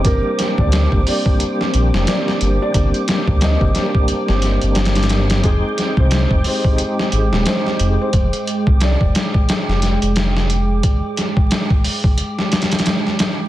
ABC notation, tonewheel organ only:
X:1
M:4/4
L:1/8
Q:"Swing 16ths" 1/4=89
K:Gphr
V:1 name="Tonewheel organ"
[G,B,DG]3 [G,B,DG]4- [G,B,DG] | [G,B,DG]3 [G,B,DG]4- [G,B,DG] | [A,CEg]3 [A,CEG]4- [A,CEG] | z8 |
z8 |]